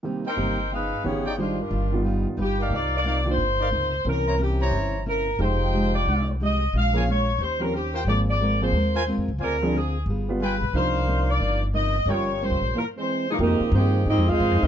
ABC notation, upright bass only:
X:1
M:4/4
L:1/8
Q:"Swing" 1/4=180
K:Cm
V:1 name="Upright bass" clef=bass
z2 G,,,3 z G,,,2- | G,,, z G,,,3 z G,,,2 | C,,4 G,,,2 _D,,2 | C,,4 G,,,4 |
F,,,4 C,,4 | B,,,4 E,,4 | A,,,4 E,,2- (3E,, F,, _D,, | D,,4 G,,,3 =B,,, |
C,,4 G,,,4 | G,,,2- (3G,,, _D,, B,,, z4 | [K:Fm] F,, z G,,2 (3A,, F,, E,, (3G,, F,, E,, |]